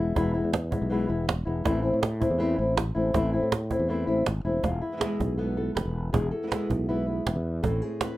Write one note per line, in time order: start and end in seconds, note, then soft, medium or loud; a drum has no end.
0.00 0.14 E1 medium
0.00 0.16 E2 medium
0.00 0.15 G#3 soft
0.00 0.15 B3 soft
0.00 0.15 E4 medium
0.15 0.40 E1 loud
0.15 0.33 B2 medium
0.15 0.34 E3 medium
0.15 0.34 G#3 medium
0.15 0.34 B3 medium
0.15 0.32 E4 medium
0.15 cajon bass loud
0.15 cajon slap soft
0.34 0.52 G#3 soft
0.34 0.52 B3 medium
0.34 0.52 E4 medium
0.34 cajon slap soft
0.44 0.77 E2 medium
0.52 muted nylon-string guitar stroke medium
0.52 cajon slap loud
0.71 0.90 G#3 soft
0.71 0.90 B3 soft
0.71 0.89 E4 medium
0.71 cajon bass medium
0.82 1.06 B1 medium
0.90 1.08 B2 medium
0.90 1.08 E3 medium
0.90 1.09 G#3 medium
0.90 1.08 B3 medium
0.90 1.07 E4 medium
1.08 1.42 E1 medium
1.08 1.27 G#3 soft
1.08 1.27 B3 medium
1.08 1.27 E4 medium
1.08 cajon slap soft
1.28 muted nylon-string guitar stroke medium
1.28 cajon slap loud
1.45 1.63 E1 medium
1.45 1.64 G#3 soft
1.45 1.64 B3 medium
1.45 1.64 E4 medium
1.64 1.90 A1 loud
1.64 1.83 E3 medium
1.64 1.83 A3 medium
1.64 1.82 C4 medium
1.64 1.81 E4 loud
1.64 cajon bass loud
1.64 cajon slap soft
1.82 2.01 A3 soft
1.82 2.01 C4 medium
1.82 2.01 E4 medium
1.82 cajon slap soft
1.93 2.26 A2 medium
2.01 muted nylon-string guitar stroke medium
2.01 cajon slap loud
2.20 2.38 A3 soft
2.20 2.38 C4 medium
2.20 2.39 E4 medium
2.20 cajon bass medium
2.30 2.55 E2 medium
2.38 2.57 E3 medium
2.38 2.57 A3 medium
2.38 2.57 C4 medium
2.38 2.56 E4 medium
2.57 2.91 A1 medium
2.57 2.75 A3 soft
2.57 2.76 C4 soft
2.57 2.76 E4 medium
2.57 cajon slap soft
2.76 muted nylon-string guitar stroke medium
2.76 cajon slap loud
2.95 3.12 A1 medium
2.95 3.13 A3 soft
2.95 3.14 C4 soft
2.95 3.13 E4 medium
3.13 3.39 A1 loud
3.13 3.32 E3 medium
3.13 3.32 A3 medium
3.13 3.33 C4 medium
3.13 3.32 E4 medium
3.13 cajon bass loud
3.13 cajon slap soft
3.33 3.51 A3 soft
3.33 3.51 C4 medium
3.33 3.51 E4 medium
3.33 cajon slap soft
3.43 3.75 A2 medium
3.52 muted nylon-string guitar stroke medium
3.52 cajon slap loud
3.70 3.88 A3 soft
3.70 3.89 C4 soft
3.70 3.88 E4 medium
3.70 cajon bass medium
3.79 4.04 E2 medium
3.88 4.07 E3 medium
3.88 4.07 A3 medium
3.88 4.07 C4 medium
3.88 4.06 E4 medium
4.07 4.25 A1 medium
4.07 4.25 A3 soft
4.07 4.26 C4 medium
4.07 4.25 E4 medium
4.07 cajon slap soft
4.26 4.43 G#1 medium
4.26 muted nylon-string guitar stroke medium
4.26 cajon slap medium
4.45 4.62 E1 medium
4.45 4.63 A3 soft
4.45 4.63 C4 soft
4.45 4.63 E4 medium
4.63 4.80 E1 medium
4.63 6.13 E2 medium
4.63 4.82 F4 medium
4.63 muted nylon-string guitar stroke medium
4.63 cajon bass medium
4.63 cajon slap soft
4.82 5.38 E4 medium
4.92 4.96 E3 soft
4.92 4.96 G#3 soft
4.92 4.97 B3 soft
4.92 4.97 E4 soft
4.97 5.01 E3 soft
4.97 5.01 G#3 soft
4.97 5.01 B3 medium
4.97 5.01 E4 medium
4.97 5.37 G#4 medium
5.01 5.19 B2 medium
5.01 5.19 E3 medium
5.01 5.20 G#3 medium
5.01 5.20 B3 medium
5.01 5.19 E4 medium
5.01 cajon slap medium
5.20 5.69 B1 medium
5.20 5.38 G#3 soft
5.20 5.38 B3 soft
5.20 5.38 E4 soft
5.20 cajon bass medium
5.38 5.56 B2 medium
5.38 5.57 E3 medium
5.38 5.57 G#3 medium
5.38 6.11 B3 medium
5.38 5.57 B3 medium
5.38 5.56 E4 medium
5.38 5.56 A4 medium
5.57 5.76 G#3 soft
5.57 5.76 B3 soft
5.57 5.75 E4 soft
5.57 5.75 A4 medium
5.57 cajon slap soft
5.75 5.84 E1 medium
5.75 6.12 B4 medium
5.75 muted nylon-string guitar stroke soft
5.75 cajon slap medium
5.85 6.10 E1 medium
6.13 6.30 E1 loud
6.13 7.64 E2 medium
6.13 6.31 G#4 medium
6.13 muted nylon-string guitar stroke medium
6.13 cajon bass medium
6.31 6.51 A4 medium
6.31 cajon slap soft
6.43 6.46 E3 soft
6.43 6.46 G#3 soft
6.43 6.47 B3 soft
6.43 6.47 E4 soft
6.47 6.51 E3 medium
6.47 6.51 G#3 medium
6.47 6.51 B3 medium
6.47 6.52 E4 medium
6.47 7.26 G#4 medium
6.52 6.69 B2 medium
6.52 6.70 E3 medium
6.52 6.70 G#3 medium
6.52 6.70 B3 medium
6.52 6.69 E4 medium
6.52 cajon slap loud
6.70 7.19 B1 medium
6.70 6.89 G#3 soft
6.70 6.89 B3 soft
6.70 6.88 E4 soft
6.70 cajon bass medium
6.89 7.07 B2 medium
6.89 7.07 E3 medium
6.89 7.07 G#3 medium
6.89 7.08 B3 medium
6.89 7.07 B3 medium
6.89 7.64 E4 medium
6.89 7.06 E4 medium
7.07 7.26 G#3 soft
7.07 7.26 B3 soft
7.07 7.25 E4 soft
7.07 cajon slap soft
7.26 7.35 E1 medium
7.26 7.62 B3 soft
7.26 muted nylon-string guitar stroke medium
7.26 cajon slap medium
7.36 7.60 E2 medium
7.63 7.80 A1 medium
7.63 8.17 A2 medium
7.63 7.81 E3 medium
7.63 7.82 A3 medium
7.63 7.82 C4 medium
7.63 7.81 E4 medium
7.63 7.82 A4 medium
7.63 cajon bass medium
7.82 8.01 A3 soft
7.82 8.01 C4 soft
7.82 8.00 E4 soft
7.82 8.01 G#4 medium
7.82 cajon slap soft
8.01 8.17 E3 soft
8.01 8.17 A3 soft
8.01 8.17 C4 soft
8.01 8.17 E4 medium
8.01 8.17 B4 medium
8.01 cajon slap loud